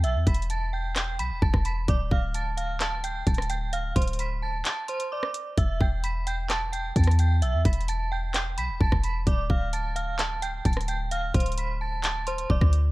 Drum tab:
HH |x-----------x---x---x---x-----------------------x-----------x-----------------------x-----------|x-----------------------x-----------x-----------x-----------x-----------x---x---x---x-----------|x-----------x--x--x--x--x-----------------------x-----------x-----x-----------------x-----------|x-----------------------x-----------x-----------x-----------x-----------x---x---x---x-----------|
CP |------------------------------------------------x-----------------------------------------------|------------------------------------------------x-----------------------------------------------|------------------------------------------------x-----------------------------------------------|------------------------------------------------x-----------------------------------------------|
SD |------------------------------------------------r-----------------------------r-----------------|------------------------------------------------r-----------------------------r-----------------|------------------------------------------------------------------------------r-----------------|------------------------------------------------r-----------------------------r-----------------|
BD |------------o-----------------------------------------------------------o-----o-----------------|o-----------o-----------------------------------------------------------o-----------------------|------------o-----------------------------------------------------------------------------------|o-----------o-----------------------------------------------------------o-----------------------|

HH |x-----------x---x---x---x-----------------------x-----------x-----------------------x-----------|x-----------------------x-----------x-----------x-----------x-----------x---x---x---x-----------|x-----------x--x--x--x--x-----------------------x-----------x-----x-----------------x-----------|
CP |------------------------------------------------x-----------------------------------------------|------------------------------------------------x-----------------------------------------------|------------------------------------------------x-----------------------------------------------|
SD |------------------------------------------------r-----------------------------r-----------------|------------------------------------------------r-----------------------------r-----------------|------------------------------------------------------------------------------r-----------------|
BD |------------o-----------------------------------------------------------o-----o-----------------|o-----------o-----------------------------------------------------------o-----------------------|------------o-----------------------------------------------------------o-----o-----------------|